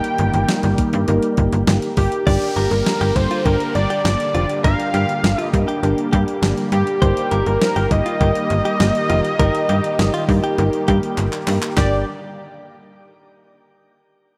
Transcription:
Already playing: analog synth pad D#3 G3 A#3 G4, synth keys A#3 D#4 G4 A#4, analog synth lead G5
0.04 closed hi-hat
0.18 fm bass G1, synth keys A#3 D#4 G4 A#4, closed hi-hat
0.34 fm bass G1, closed hi-hat
0.48 synth keys A#3 D#4 G4 A#4, snare, closed hi-hat
0.63 fm bass G1, closed hi-hat
0.78 synth keys A#3 D#4 G4 A#4, kick, closed hi-hat
0.93 fm bass G2, closed hi-hat
1.08 fm bass G1, synth keys A#3 D#4 G4 A#4, closed hi-hat
1.23 closed hi-hat
1.37 fm bass G1, synth keys A#3 D#4 G4 A#4, kick, closed hi-hat
1.52 fm bass G1, closed hi-hat
1.67 fm bass G1, synth keys A#3 D#4 G4 A#4, snare, closed hi-hat
1.82 closed hi-hat
1.97 fm bass G1, synth keys A#3 D#4 G4 A#4, analog synth lead G4, kick, open hi-hat
2.12 closed hi-hat
2.26 fm bass G1, analog synth pad D3 G3 A#3 G4, synth keys D4 G4 A#4, analog synth lead G4, clean electric guitar D5, kick, closed hi-hat, downlifter
2.42 closed hi-hat
2.56 fm bass G1, synth keys D4 G4 A#4, clean electric guitar A#4, closed hi-hat
2.71 fm bass G1, analog synth lead A#4, closed hi-hat
2.86 synth keys D4 G4 A#4, snare, closed hi-hat
3.01 fm bass G1, clean electric guitar G4, closed hi-hat
3.15 fm bass G1, synth keys D4 G4 A4, analog synth lead C5, kick, closed hi-hat
3.31 clean electric guitar F4, closed hi-hat
3.45 fm bass G1, synth keys D4 G4 A#4, clean electric guitar G4, analog synth lead A#4, kick, closed hi-hat
3.60 closed hi-hat
3.75 fm bass G1, synth keys D4 G4 A#4, analog synth lead D5, closed hi-hat
3.90 clean electric guitar G4, closed hi-hat
4.04 fm bass G1, synth keys D4 G4 A#4, analog synth lead D5, snare, closed hi-hat
4.20 closed hi-hat
4.34 fm bass F1, synth keys D4 G4 C5, clean electric guitar F4, closed hi-hat
4.49 closed hi-hat
4.64 fm bass G1, synth keys D4 G4 A#4, clean electric guitar A#4, analog synth lead F5, kick, closed hi-hat
4.80 closed hi-hat
4.94 fm bass G2, synth keys D4 A#4, clean electric guitar G4, closed hi-hat
5.09 closed hi-hat
5.24 fm bass G1, synth keys D4 G4 A#4, snare, closed hi-hat
5.38 clean electric guitar F4, closed hi-hat
5.43 analog synth lead D#5
5.53 fm bass G2, synth keys D4 G4 A#4, kick, closed hi-hat
5.68 clean electric guitar G4, closed hi-hat
5.83 fm bass G1, synth keys D4 G4 A#4, closed hi-hat
5.98 closed hi-hat
6.13 fm bass G2, synth keys D4 G4 A#4, clean electric guitar G4, kick, closed hi-hat
6.28 closed hi-hat
6.42 fm bass G1, synth keys D4 G4 A#4, snare, closed hi-hat
6.58 closed hi-hat
6.72 fm bass G2, synth keys D4 G4 A#4, analog synth lead G4, closed hi-hat
6.87 closed hi-hat
7.02 fm bass G1, analog synth pad D#3 G4, synth keys D#4 G4 A#4, analog synth lead G4, clean electric guitar C5, kick, closed hi-hat
7.17 closed hi-hat
7.31 fm bass G1, synth keys D#4 G4 A#4, clean electric guitar A#4, closed hi-hat
7.46 fm bass G1, analog synth lead A#4, closed hi-hat
7.61 synth keys D#4 G4 C5, snare, closed hi-hat
7.76 fm bass G1, clean electric guitar G4, closed hi-hat
7.91 fm bass G1, synth keys D#4 G4 A#4, analog synth lead D#5, kick, closed hi-hat
8.06 clean electric guitar F4, closed hi-hat
8.21 fm bass G1, synth keys D#4 G4 A#4, clean electric guitar G4, kick, closed hi-hat
8.35 closed hi-hat
8.50 fm bass G1, synth keys D#4 G4 A#4, closed hi-hat
8.65 clean electric guitar G4, closed hi-hat
8.80 fm bass G1, synth keys D#4 G4 A#4, snare, closed hi-hat
8.95 closed hi-hat
9.10 fm bass F1, synth keys D#4 G4 A#4, clean electric guitar F4, closed hi-hat
9.25 closed hi-hat
9.39 fm bass G1, synth keys D#4 G4 A#4, clean electric guitar A#4, kick, closed hi-hat
9.55 closed hi-hat
9.69 fm bass G2, synth keys D#4 G4 A#4, clean electric guitar G4, closed hi-hat
9.84 closed hi-hat
9.99 fm bass G1, synth keys D#4 G4 A#4, snare, closed hi-hat
10.14 clean electric guitar F4, closed hi-hat
10.29 fm bass G2, synth keys D#4 G4 A#4, kick, open hi-hat
10.44 clean electric guitar G4, closed hi-hat
10.58 fm bass G1, synth keys D#4 G4 A#4, closed hi-hat
10.73 closed hi-hat
10.88 fm bass G2, synth keys D#4 G4 A#4, clean electric guitar G4, kick, closed hi-hat
11.03 closed hi-hat
11.18 fm bass G1, synth keys D#4 G4 A#4, clap, closed hi-hat
11.33 clap, closed hi-hat
11.47 fm bass G2, synth keys D#4 G4 A#4, clap, open hi-hat
11.62 clap, closed hi-hat
11.77 fm bass G1, analog synth pad D3 G3 A#3 G4, synth keys D4 G4 A#4, clean electric guitar G4, analog synth lead D5, kick, snare, clap

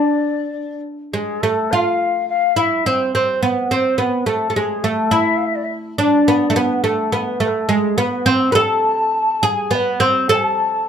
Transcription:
Already playing: oud D4, ney D5
1.13 oud G#3, ney G#4
1.41 oud A3, ney A4
1.71 oud F4, ney F5
2.29 ney F5
2.56 oud E4, ney F5
2.61 ney E5
2.86 oud C4, ney C5
3.14 oud C4, ney C5
3.41 oud B3, ney B4
3.70 oud C4, ney C5
3.98 oud B3, ney B4
4.26 oud A3, ney A4
4.50 oud A3
4.56 oud G#3, ney G#4
4.84 oud A3, ney A4
5.11 oud E4, ney E5
5.37 ney F5
5.46 ney E5
5.55 ney D5
5.64 ney E5
5.98 oud D4, ney D5
6.28 oud B3
6.50 oud A3
6.56 oud B3, ney B4
6.84 oud A3
6.88 ney A4
7.12 oud B3, ney B4
7.40 oud A3, ney B4
7.48 ney A4
7.69 oud G#3
7.73 ney G#4
7.98 oud B3, ney B4
8.26 oud C4
8.31 ney C5
8.52 oud A4 B4
8.60 ney A5
9.43 oud G#4, ney G#5
9.71 oud B3
9.75 ney B4
10.00 oud C4, ney C5
10.29 oud A4, ney G#5
10.45 ney A5

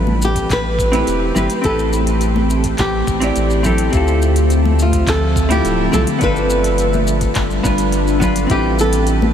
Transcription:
Already playing: sub bass A1, ambient pad A3 C4 G4, hollow-body jazz guitar C4 E4 G4 B4
0.07 high conga
0.22 nylon-string guitar G4, shaker
0.36 kick, closed hi-hat, shaker
0.50 sub bass A1, nylon-string guitar B4, kick, clap, closed hi-hat, shaker
0.79 kick, shaker
0.92 hollow-body jazz guitar C4 E4 G4 B4, closed hi-hat, high conga, shaker
1.07 sub bass E1, closed hi-hat, shaker
1.35 sub bass G1, hollow-body jazz guitar C4 E4 G4 B4, high conga, low conga, shaker
1.50 closed hi-hat, shaker
1.62 sub bass A1, hollow-body jazz guitar C4 E4, nylon-string guitar A4, kick, closed hi-hat, shaker
1.66 hollow-body jazz guitar G4 B4
1.79 shaker
1.93 shaker
2.07 closed hi-hat, shaker
2.21 closed hi-hat, shaker
2.36 high conga
2.50 shaker
2.64 kick, closed hi-hat, shaker
2.78 sub bass A1, nylon-string guitar G4, kick, clap, closed hi-hat, shaker
3.07 sub bass A1, kick, shaker
3.20 hollow-body jazz guitar C4 E4 G4 D5, closed hi-hat, shaker
3.36 sub bass A1, closed hi-hat, shaker
3.50 shaker
3.63 hollow-body jazz guitar C4 E4 G4 A4, kick, low conga, shaker
3.78 closed hi-hat, shaker
3.90 sub bass D2, ambient pad D3 F3 E5, hollow-body jazz guitar C4 E4, kick, closed hi-hat, shaker
3.94 ambient pad C4, hollow-body jazz guitar F4 A4
4.08 shaker
4.22 shaker
4.36 closed hi-hat, shaker
4.50 closed hi-hat, shaker
4.65 high conga
4.79 nylon-string guitar F4, shaker
4.93 kick, closed hi-hat, shaker
5.07 sub bass D2, nylon-string guitar A4, kick, clap, closed hi-hat, shaker
5.36 kick, shaker
5.49 hollow-body jazz guitar C4 E4 F4 A4, nylon-string guitar G4, closed hi-hat, high conga, shaker
5.64 sub bass D1, closed hi-hat, shaker
5.92 sub bass C2, hollow-body jazz guitar C4 E4 F4 A4, nylon-string guitar A4, high conga, low conga, shaker
6.07 closed hi-hat, shaker
6.19 sub bass G1, ambient pad G3 D4 F4 A4 B4, hollow-body jazz guitar B3 D4, kick, closed hi-hat, shaker
6.23 hollow-body jazz guitar F4 A4, nylon-string guitar B4
6.36 shaker
6.50 shaker
6.64 closed hi-hat, shaker
6.78 closed hi-hat, shaker
6.93 high conga, shaker
7.07 shaker
7.21 kick, closed hi-hat, shaker
7.35 sub bass G1, kick, clap, closed hi-hat, shaker
7.50 shaker
7.63 sub bass G1, hollow-body jazz guitar B3 D4 F4 B4, kick, shaker
7.78 closed hi-hat, shaker
7.92 closed hi-hat, shaker
8.08 shaker
8.20 hollow-body jazz guitar B3 D4 F4 B4, kick, low conga, shaker
8.36 closed hi-hat, shaker
8.47 sub bass A1, ambient pad A3 C4, hollow-body jazz guitar C4 E4, kick, closed hi-hat, shaker
8.51 ambient pad G4, hollow-body jazz guitar G4 B4, nylon-string guitar G4
8.79 nylon-string guitar A4, shaker
8.93 closed hi-hat, shaker
9.07 closed hi-hat, shaker
9.22 high conga

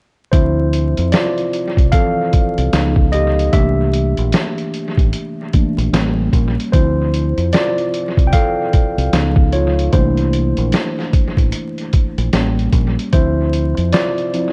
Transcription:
0.32 fingered electric bass D2, tine electric piano F3 C4 E4 C5 E5, kick, closed hi-hat
0.73 closed hi-hat
0.97 fingered electric bass F2, closed hi-hat
1.12 tine electric piano F4 D5, snare, closed hi-hat
1.38 closed hi-hat
1.53 closed hi-hat
1.77 fingered electric bass C2, kick, closed hi-hat
1.92 tine electric piano E3 F3 C4 A4 F5, kick, closed hi-hat
2.33 kick, closed hi-hat
2.58 fingered electric bass C2, closed hi-hat
2.73 fingered electric bass C#2, tine electric piano F3 B3 D#4, snare, closed hi-hat
2.96 kick
3.12 tine electric piano G4 D#5, closed hi-hat
3.39 closed hi-hat
3.53 fingered electric bass C2, tine electric piano E3 A3 A#3 D4 G4 E5, kick, closed hi-hat
3.93 closed hi-hat
4.17 fingered electric bass A#1, closed hi-hat
4.32 snare, closed hi-hat
4.58 closed hi-hat
4.74 closed hi-hat
4.97 fingered electric bass A1, kick, closed hi-hat
5.13 closed hi-hat
5.53 tine electric piano E3 A3 A#3 D4, kick, closed hi-hat
5.78 fingered electric bass A#1, closed hi-hat
5.93 fingered electric bass A1, tine electric piano G3 A#3 C#4, snare, closed hi-hat
6.33 fingered electric bass A#1, kick, closed hi-hat
6.60 closed hi-hat
6.72 fingered electric bass D2, tine electric piano F3 C4 E4 C5, kick, closed hi-hat
7.14 closed hi-hat
7.38 fingered electric bass F2, closed hi-hat
7.53 tine electric piano F4 D5, snare, closed hi-hat
7.78 closed hi-hat
7.94 closed hi-hat
8.17 fingered electric bass C2, kick, closed hi-hat
8.27 tine electric piano G5
8.33 tine electric piano A4 F5, kick, closed hi-hat
8.73 kick, closed hi-hat
8.98 fingered electric bass C2, closed hi-hat
9.13 fingered electric bass C#2, tine electric piano F3 B3 D#4, snare, closed hi-hat
9.36 kick
9.53 tine electric piano F4 C#5, closed hi-hat
9.79 closed hi-hat
9.93 fingered electric bass C2, tine electric piano E3 A3 A#3 D4 E4 C5, kick, closed hi-hat
10.17 closed hi-hat
10.33 closed hi-hat
10.57 fingered electric bass A#1, closed hi-hat
10.72 snare, closed hi-hat
10.99 snare
11.13 kick, closed hi-hat
11.37 fingered electric bass A1, kick, closed hi-hat
11.52 closed hi-hat
11.78 closed hi-hat
11.93 kick, closed hi-hat
12.18 fingered electric bass A#1, closed hi-hat
12.33 fingered electric bass A1, tine electric piano G3 A#3 C#4, snare, closed hi-hat
12.59 closed hi-hat
12.72 fingered electric bass A#1, kick, closed hi-hat
12.99 closed hi-hat
13.13 fingered electric bass D2, tine electric piano F3 C4 E4 C5 E5, kick, closed hi-hat
13.53 closed hi-hat
13.77 fingered electric bass F2, closed hi-hat
13.92 tine electric piano F4 D5, snare, closed hi-hat
14.18 closed hi-hat
14.34 tine electric piano F3 C4 E4, closed hi-hat

